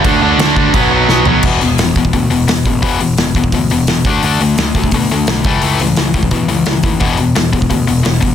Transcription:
<<
  \new Staff \with { instrumentName = "Overdriven electric guitar" } { \clef bass \time 4/4 \key d \lydian \tempo 4 = 172 <d a d'>8 <d a d'>8 <d a d'>8 <d a d'>8 <b, fis b>8 <b, fis b>8 <b, fis b>8 <b, fis b>8 | r1 | r1 | r1 |
r1 | r1 | }
  \new Staff \with { instrumentName = "Distorted electric guitar" } { \clef bass \time 4/4 \key d \lydian <d a d'>8 <d a d'>8 <d a d'>8 <d a d'>8 <b, fis b>8 <b, fis b>8 <b, fis b>8 <b, fis b>8 | <e, b, e>8 <e, b,>8 <e, b,>8 <e, b,>8 <e, b,>8 <e, b,>8 <e, b,>8 <e, b,>8 | <e, b, e>8 <e, b,>8 <e, b,>8 <e, b,>8 <e, b,>8 <e, b,>8 <e, b,>8 <d a d'>8 | <d a d'>8 <d a>8 <d a>8 <d a>8 <d a>8 <d a>8 <d a>8 <a, e a>8 |
<a, e a>8 <a, e>8 <a, e>8 <a, e>8 <a, e>8 <a, e>8 <a, e>8 <a, e>8 | <e, b, e>8 <e, b,>8 <e, b,>8 <e, b,>8 <e, b,>8 <e, b,>8 <e, b,>8 <e, b,>8 | }
  \new Staff \with { instrumentName = "Picked electric bass" } { \clef bass \time 4/4 \key d \lydian d,8 d,8 d,8 d,8 b,,8 b,,8 b,,8 b,,8 | e,,8 e,,8 e,,8 e,,8 d,8 e,,8 e,,8 a,,8 | e,,8 e,,8 e,,8 e,,8 d,8 e,,8 e,,8 d,8 | d,8 d,8 d,8 d,8 b,8 d,8 b,,8 cis,8 |
cis,8 cis,8 cis,8 cis,8 b,8 cis,8 cis,8 dis,8 | e,,8 e,,8 e,,8 e,,8 d,8 e,,8 e,,8 a,,8 | }
  \new DrumStaff \with { instrumentName = "Drums" } \drummode { \time 4/4 <cymc bd>4 <cymc sn>8 bd8 <cymc bd>4 sn8 tomfh8 | <cymc bd>8 hho8 <hho sn>8 <hho bd>16 bd16 <hho bd>8 hho8 <hho sn>8 <hho bd>8 | <hho bd>8 hho8 <hho sn>8 <hho bd>16 bd16 <hho bd>8 hho8 <hho sn>8 <hho bd>8 | hho8 hho8 <hho sn>8 <hho bd>16 bd16 <hho bd>8 hho8 <hho sn>8 <hho bd>8 |
hho8 hho8 <hho sn>8 <hho bd>16 bd16 <hho bd>8 hho8 <hho sn>8 <hho bd>8 | <hho bd>8 hho8 <hho sn>8 <hho bd>16 bd16 <hho bd>8 hho8 <hho sn>8 <hho bd>8 | }
>>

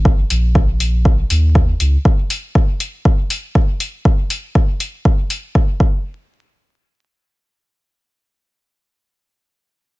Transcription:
<<
  \new Staff \with { instrumentName = "Sub bass" } { \clef bass \time 4/4 \key bes \minor \tempo 4 = 120 aes,,8 bes,,2 ees,4 des,8 | r1 | r1 | r1 |
r1 | }
  \new DrumStaff \with { instrumentName = "Drums" } \drummode { \time 4/4 bd8 hho8 bd8 hho8 bd8 hho8 bd8 hho8 | bd8 hho8 bd8 hho8 bd8 hho8 bd8 hho8 | bd8 hho8 bd8 hho8 bd8 hho8 bd8 bd8 | r4 r4 r4 r4 |
r4 r4 r4 r4 | }
>>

